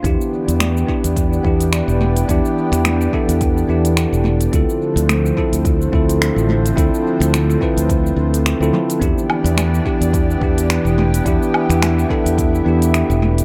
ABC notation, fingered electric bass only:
X:1
M:4/4
L:1/16
Q:"Swing 16ths" 1/4=107
K:Ephr
V:1 name="Fingered electric bass" clef=bass
E,, z2 E,,3 z E,,3 E,,3 E,,,3 | E,, z2 E,,3 z E,,3 E,,3 E,,,3 | D,, z2 D,,3 z D,,3 D,,3 A,,,3 | D,, z2 D,,3 z D,,3 D,,3 D,, z2 |
E,, z2 E,,3 z E,,3 E,,3 E,,,3 | E,, z2 E,,3 z E,,3 E,,3 E,,,3 |]